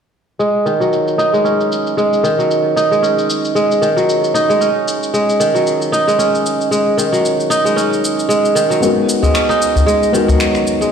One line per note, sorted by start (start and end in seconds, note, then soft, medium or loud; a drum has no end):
0.39 0.71 G#3 medium
0.39 shaker soft
0.66 2.22 D#3 medium
0.66 shaker medium
0.80 2.29 F#3 medium
0.80 shaker soft
0.93 shaker soft
1.08 shaker soft
1.18 2.76 D#4 medium
1.18 shaker medium
1.33 1.96 G#3 medium
1.33 shaker soft
1.44 3.02 C#4 medium
1.44 shaker soft
1.61 shaker soft
1.72 shaker medium
1.87 shaker soft
1.97 2.29 G#3 medium
1.97 shaker soft
2.13 shaker soft
2.24 3.80 D#3 medium
2.24 shaker medium
2.39 3.87 F#3 medium
2.39 shaker soft
2.51 shaker soft
2.76 4.34 D#4 medium
2.76 shaker medium
2.91 3.54 G#3 medium
2.91 shaker soft
3.02 4.60 C#4 medium
3.02 shaker soft
3.19 shaker soft
3.30 shaker medium
3.45 shaker soft
3.55 3.87 G#3 medium
3.55 shaker soft
3.71 shaker soft
3.82 4.66 D#3 medium
3.82 shaker medium
3.97 4.66 F#3 medium
3.97 shaker soft
4.09 shaker soft
4.24 shaker soft
4.34 5.92 D#4 medium
4.34 shaker medium
4.49 4.66 G#3 medium
4.49 shaker soft
4.61 6.18 C#4 medium
4.61 shaker soft
4.88 shaker medium
5.03 shaker soft
5.14 5.45 G#3 medium
5.14 shaker soft
5.29 shaker soft
5.40 6.96 D#3 medium
5.40 shaker medium
5.54 7.03 F#3 medium
5.54 shaker soft
5.67 shaker soft
5.82 shaker soft
5.92 7.50 D#4 medium
5.92 shaker medium
6.07 6.70 G#3 medium
6.07 shaker soft
6.19 7.76 C#4 medium
6.19 shaker soft
6.35 shaker soft
6.46 shaker medium
6.61 shaker soft
6.71 7.03 G#3 medium
6.71 shaker soft
6.97 8.54 D#3 medium
6.97 shaker medium
7.12 8.61 F#3 medium
7.12 shaker soft
7.25 shaker soft
7.40 shaker soft
7.50 9.12 D#4 medium
7.50 shaker medium
7.65 8.27 G#3 medium
7.65 shaker soft
7.76 9.34 C#4 medium
7.76 shaker soft
7.93 shaker soft
8.05 shaker medium
8.19 shaker soft
8.29 8.61 G#3 medium
8.29 shaker soft
8.45 shaker soft
8.55 8.87 D#3 medium
8.55 shaker medium
8.70 8.87 F#3 medium
8.70 shaker soft
8.81 10.10 G#3 medium
8.81 10.11 B3 medium
8.81 10.11 D#4 medium
8.81 10.12 F#4 medium
8.81 shaker soft
8.85 10.12 A#4 medium
9.09 shaker medium
9.23 9.85 G#3 medium
9.23 udu medium
9.23 shaker soft
9.34 10.92 C#4 medium
9.34 finger snap medium
9.34 shaker soft
9.49 10.92 D#4 medium
9.49 shaker soft
9.62 shaker medium
9.76 udu medium
9.76 shaker soft
9.86 10.19 G#3 medium
9.86 shaker soft
10.03 shaker soft
10.12 10.92 D#3 medium
10.12 10.89 G#3 medium
10.12 10.89 B3 medium
10.12 10.90 D#4 medium
10.12 10.90 F#4 medium
10.12 shaker medium
10.16 10.91 A#4 medium
10.28 10.92 F#3 medium
10.28 udu medium
10.28 shaker soft
10.40 finger snap medium
10.40 shaker soft
10.55 finger snap soft
10.55 shaker soft
10.67 shaker medium
10.81 10.92 G#3 medium
10.81 shaker soft